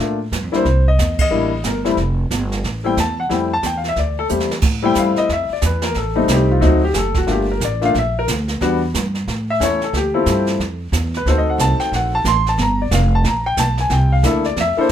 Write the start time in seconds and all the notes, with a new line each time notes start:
Already playing: A#3
0.00 A2 A3 D4 F4
0.32 G2, kick, snare, hi-hat pedal
0.43 F2
0.52 D2 G3 A#3 D4 E4 C5, snare
0.65 C2, brush sweep, kick, snare
0.88 D#5
0.98 E2, kick, snare, hi-hat pedal
1.19 D#5, kick, ride
1.31 A1 G3 A#3 D4 E4, brush sweep
1.64 G1 A#4, kick, snare, hi-hat pedal
1.85 G3 A3 C4 E4, snare
1.97 F1, brush sweep, kick, snare
2.30 G1, kick, snare, hi-hat pedal
2.52 snare
2.63 A1, brush sweep, kick, snare
2.84 G3 A3 C4 E4 G5
2.97 E2 A5, kick, snare, hi-hat pedal
3.20 F#5
3.29 F2 G3 A3 C4 E4, brush sweep, kick, snare
3.34 G5
3.53 A5
3.63 E2 G5, kick, snare, hi-hat pedal
3.78 F5
3.84 snare
3.89 E5
3.96 D2 D5, brush sweep, kick, snare
4.19 A4
4.29 E2 G3 A3 C4 G4, hi-hat pedal
4.40 snare
4.51 snare
4.62 A2, brush sweep, kick, snare, crash
4.82 G3 A3 C4 E4 G5
4.95 G2 F5, kick, snare, hi-hat pedal
5.16 D#5, muted upright bass stroke, snare
5.29 F2 E5, brush sweep, kick, snare
5.50 D5, muted upright bass stroke
5.62 E2, kick, snare, hi-hat pedal
5.66 B4
5.82 A#4, snare
5.94 A1 A4, brush sweep, kick, snare
6.16 G3 A3 C4 D#4
6.28 C2 G4, kick, snare, hi-hat pedal
6.51 F4
6.60 D2 F#3 A3 C4 D#4, brush sweep, kick, snare
6.65 F#4
6.84 G4
6.93 F#1 G#4, kick, snare, hi-hat pedal
6.98 A4
7.14 F#4, kick, snare
7.27 G1 A3 A#3 D4 F4, brush sweep, kick, snare
7.32 G4
7.51 A#4
7.60 A1, kick, snare, hi-hat pedal
7.65 D5
7.81 A3 A#3 D4 F4 F5, snare
7.94 A#1, brush sweep, kick, snare
7.98 E5
8.19 A#4
8.28 D2, kick, snare, hi-hat pedal
8.48 snare
8.61 E2 G3 B3 D4 F#4, brush sweep, kick, snare
8.94 G2, kick, snare, hi-hat pedal
9.15 snare
9.27 A2, brush sweep, kick, snare
9.50 E5
9.60 E2 A3 C#4 E4 A4 C#5, kick, snare, hi-hat pedal
9.81 A4, snare
9.93 D2 G4, brush sweep, kick, snare
10.14 C4 E4 F4 A4
10.26 G2, kick, snare, hi-hat pedal
10.46 snare
10.59 F2, brush sweep, kick, snare
10.92 E2, kick, snare, hi-hat pedal
11.14 B4, snare
11.26 D2 C4 D#4 F#4 A4 C5, brush sweep, kick, snare
11.38 D#5
11.50 F#5
11.58 C2 A5, kick, snare, hi-hat pedal
11.79 G5, muted upright bass stroke, snare
11.92 A#1 F#5, brush sweep, kick, snare
12.15 A5
12.24 A1 C6, kick, snare, hi-hat pedal
12.46 A5, snare
12.58 G1, brush sweep, kick, snare
12.62 A#5
12.82 D5
12.91 F1 F5, kick, snare, hi-hat pedal
13.15 A5
13.24 A#1 A#5, brush sweep, kick, snare
13.46 G5
13.57 B1 A5, kick, snare, hi-hat pedal
13.78 G#5, snare
13.90 C2 G5, brush sweep, kick, snare
14.12 F5
14.23 D2 A#3 D4 E4 A4 E5, kick, snare, hi-hat pedal
14.44 D5, snare
14.56 F2, brush sweep, kick, snare
14.61 E5
14.77 A#3 D4 E4 A4 C5, muted upright bass stroke